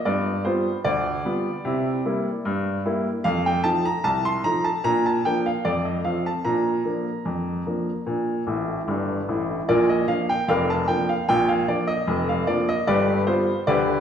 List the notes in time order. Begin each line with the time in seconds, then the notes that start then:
0.05 G2 B3 D5
0.45 G3 B3 F4 C5
0.84 D2 D5
1.25 G3 B3 F4
1.65 C3 E4
2.05 G3 A#3 E4
2.45 G2
2.85 G3 A#3 E4
3.24 F2 A3 F5
3.46 G5
3.64 F3 A3 D#4 A5
3.85 A#5
4.04 C2 A5
4.25 C6
4.44 F3 A3 D#4 A#5
4.64 A5
4.84 A#2 D4 A#5
5.06 A5
5.25 F3 A#3 D4 G5
5.46 F5
5.65 F2 A3 D5
5.85 D#5
6.04 F3 A3 C4 F5
6.26 A5
6.45 A#2 D4 A#5
6.85 F3 A#3 D4
7.25 F2
7.66 F3 A#3 D4
8.07 A#2 D4
8.47 A1 A2
8.88 G1 G2
9.29 A1 A2
9.68 A#1 A#2 F4 A#4 D5
9.89 D#5
10.08 F3 A#3 D4 F5
10.29 G5
10.48 F1 F2 A#4 D5 F5
10.70 A5
10.88 F3 A#3 D4 G5
11.09 F5
11.29 A#1 A#2 G5
11.49 F5
11.68 F3 A#3 D4 D5
11.87 D#5
12.07 F1 F2
12.29 F5
12.47 F3 A#3 D4 D5
12.69 D#5
12.87 G1 G2 G4 B4 D5
13.27 G3 B3 F4 C5
13.67 D2 D3 G4 B4 D5